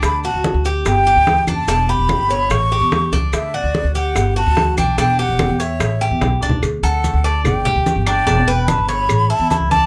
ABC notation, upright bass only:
X:1
M:4/4
L:1/16
Q:1/4=146
K:D
V:1 name="Upright bass" clef=bass
D,,3 D,,2 D,,3 G,,,3 D,,3 F,,,2 | E,,,3 E,,,2 G,,,3 A,,,3 E,,3 C,,2 | D,,3 D,,2 D,,3 G,,,3 D,,3 B,,,2 | E,,,3 E,,,2 E,,3 A,,,3 E,, B,,,2 C,,2 |
D,,2 D,,3 D,,3 G,,,2 z D,, z G,,,3 | E,,,2 E,,,3 G,,,3 A,,,2 z E,, z C,,3 |]